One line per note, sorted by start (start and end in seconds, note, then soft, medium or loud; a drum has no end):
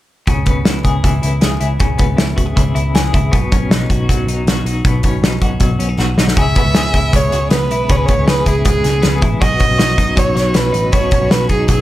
0.27 0.43 C#2 medium
0.27 1.78 C#3 medium
0.27 kick medium
0.27 closed hi-hat medium
0.46 0.62 C#2 medium
0.46 1.98 B3 soft
0.46 kick medium
0.46 closed hi-hat medium
0.65 0.81 C#2 medium
0.65 1.21 E4 soft
0.65 snare loud
0.65 closed hi-hat medium
0.84 1.00 C#2 medium
0.84 1.40 G#4 medium
0.84 kick medium
0.84 closed hi-hat medium
1.04 1.19 C#2 medium
1.04 2.55 E3 soft
1.04 kick medium
1.04 closed hi-hat medium
1.22 1.39 C#2 medium
1.22 1.59 E4 soft
1.22 closed hi-hat medium
1.41 1.58 C#2 medium
1.41 2.36 G#4 medium
1.41 snare medium
1.41 closed hi-hat medium
1.60 1.77 C#2 medium
1.60 2.16 E4 medium
1.60 closed hi-hat medium
1.79 1.96 C#2 medium
1.79 3.31 C#3 medium
1.79 kick loud
1.79 closed hi-hat medium
1.98 2.15 C#2 medium
1.98 3.51 B3 medium
1.98 kick medium
1.98 closed hi-hat medium
2.17 2.34 C#2 medium
2.17 2.74 E4 soft
2.17 snare loud
2.17 closed hi-hat medium
2.36 2.53 C#2 medium
2.36 2.46 F#4 medium
2.36 kick medium
2.36 closed hi-hat medium
2.46 2.94 G#4 soft
2.56 2.72 C#2 medium
2.56 3.36 E3 medium
2.56 kick medium
2.56 closed hi-hat medium
2.75 2.91 C#2 medium
2.75 3.12 E4 medium
2.75 closed hi-hat medium
2.94 3.10 C#2 medium
2.94 3.37 G#4 medium
2.94 snare medium
2.94 closed hi-hat medium
3.14 3.29 C#2 medium
3.14 3.36 E4 medium
3.14 kick medium
3.14 closed hi-hat medium
3.32 3.48 B1 medium
3.32 4.84 B2 medium
3.32 kick medium
3.32 closed hi-hat medium
3.52 3.67 B1 medium
3.52 5.05 C#4 medium
3.52 kick medium
3.52 closed hi-hat medium
3.69 3.85 B1 medium
3.69 4.27 D#4 medium
3.69 snare loud
3.69 closed hi-hat medium
3.90 4.05 B1 medium
3.90 4.47 F#4 medium
3.90 kick medium
3.90 closed hi-hat medium
4.09 4.25 B1 medium
4.09 5.59 F#3 medium
4.09 kick medium
4.09 closed hi-hat medium
4.26 4.42 B1 medium
4.26 4.65 D#4 soft
4.26 closed hi-hat medium
4.45 4.62 B1 medium
4.45 5.41 F#4 medium
4.45 snare medium
4.45 closed hi-hat medium
4.64 4.81 B1 medium
4.64 5.22 D#4 medium
4.64 closed hi-hat medium
4.85 5.00 B1 medium
4.85 6.36 B2 medium
4.85 kick loud
4.85 closed hi-hat medium
5.03 5.19 B1 medium
5.03 5.79 C#4 medium
5.03 kick medium
5.03 closed hi-hat medium
5.22 5.38 B1 medium
5.22 5.79 D#4 medium
5.22 snare loud
5.22 closed hi-hat medium
5.41 5.57 B1 medium
5.41 5.98 F#4 medium
5.41 kick medium
5.41 closed hi-hat medium
5.60 5.76 B1 medium
5.60 6.41 F#3 medium
5.60 kick medium
5.60 closed hi-hat medium
5.79 5.95 B1 medium
5.79 5.89 C#4 medium
5.79 closed hi-hat medium
5.89 6.17 D#4 soft
5.98 6.14 B1 medium
5.98 6.37 F#4 medium
5.98 snare soft
6.17 6.33 B1 medium
6.17 6.41 D#4 medium
6.17 snare medium
6.28 snare medium
6.37 6.52 C#2 medium
6.37 7.89 C#3 medium
6.37 6.75 G#4 medium
6.37 7.18 E5 loud
6.37 kick loud
6.37 closed hi-hat medium
6.56 7.51 B3 medium
6.56 kick medium
6.56 closed hi-hat medium
6.65 6.73 C#2 medium
6.75 6.91 C#2 medium
6.75 7.32 G#4 medium
6.75 snare loud
6.75 closed hi-hat medium
6.94 7.10 C#2 medium
6.94 7.70 E4 medium
6.94 kick medium
6.94 closed hi-hat medium
7.13 7.29 C#2 medium
7.13 8.64 G#3 medium
7.13 7.51 C#5 medium
7.13 kick medium
7.13 closed hi-hat medium
7.32 7.48 C#2 medium
7.32 7.41 F#4 medium
7.32 closed hi-hat medium
7.41 7.89 G#4 soft
7.50 7.70 C#2 medium
7.50 8.09 B3 medium
7.50 7.92 B4 medium
7.50 snare medium
7.50 closed hi-hat medium
7.70 7.85 B1 medium
7.70 8.45 E4 medium
7.70 closed hi-hat medium
7.89 8.05 C#2 medium
7.89 9.40 C#3 medium
7.89 8.26 G#4 medium
7.89 7.97 C#5 medium
7.89 kick loud
7.89 closed hi-hat medium
7.96 8.07 B4 medium
8.06 9.02 B3 soft
8.06 8.28 C#5 medium
8.06 kick medium
8.06 closed hi-hat medium
8.18 8.25 C#2 medium
8.27 8.43 C#2 medium
8.27 8.83 G#4 medium
8.27 8.49 B4 medium
8.27 snare loud
8.27 closed hi-hat medium
8.46 8.62 C#2 medium
8.46 9.21 E4 medium
8.46 8.66 G#4 medium
8.46 kick medium
8.46 closed hi-hat medium
8.65 8.81 C#2 medium
8.65 9.45 G#3 medium
8.65 9.19 G#4 medium
8.65 kick medium
8.65 closed hi-hat medium
8.84 9.00 C#2 medium
8.84 9.41 G#4 medium
8.84 snare soft
8.84 closed hi-hat medium
9.02 9.19 C#2 medium
9.02 9.59 B3 medium
9.02 snare medium
9.02 closed hi-hat medium
9.22 9.38 A1 medium
9.22 9.45 E4 medium
9.22 kick medium
9.22 closed hi-hat medium
9.40 9.57 B1 medium
9.40 10.91 B2 medium
9.40 9.77 F#4 medium
9.40 10.20 D#5 loud
9.40 kick loud
9.40 closed hi-hat medium
9.60 10.53 C#4 soft
9.60 kick medium
9.60 closed hi-hat medium
9.70 9.78 B1 medium
9.78 9.95 B1 medium
9.78 10.35 F#4 medium
9.78 snare loud
9.78 closed hi-hat medium
9.97 10.14 B1 medium
9.97 10.72 D#4 medium
9.97 kick medium
9.97 closed hi-hat medium
10.16 10.33 B1 medium
10.16 11.68 F#3 medium
10.16 10.57 C#5 medium
10.16 kick medium
10.16 closed hi-hat medium
10.35 10.51 B1 medium
10.35 10.92 F#4 medium
10.35 snare soft
10.35 closed hi-hat medium
10.54 10.71 B1 medium
10.54 11.11 C#4 medium
10.54 10.94 B4 medium
10.54 snare medium
10.54 closed hi-hat medium
10.72 10.90 A1 medium
10.72 11.49 D#4 medium
10.72 closed hi-hat medium
10.92 11.09 B1 medium
10.92 11.81 B2 medium
10.92 11.30 F#4 medium
10.92 11.33 C#5 medium
10.92 kick medium
10.92 closed hi-hat medium
11.11 11.81 C#4 medium
11.11 kick medium
11.11 closed hi-hat medium
11.22 11.30 B1 medium
11.31 11.47 B1 medium
11.31 11.81 F#4 medium
11.31 11.49 B4 medium
11.31 snare loud
11.31 closed hi-hat medium
11.49 11.66 B1 medium
11.49 11.81 D#4 medium
11.49 11.68 G#4 medium
11.49 kick medium
11.49 closed hi-hat medium
11.68 11.81 B1 medium
11.68 11.81 F#3 medium
11.68 11.81 G#4 medium
11.68 kick medium
11.68 closed hi-hat medium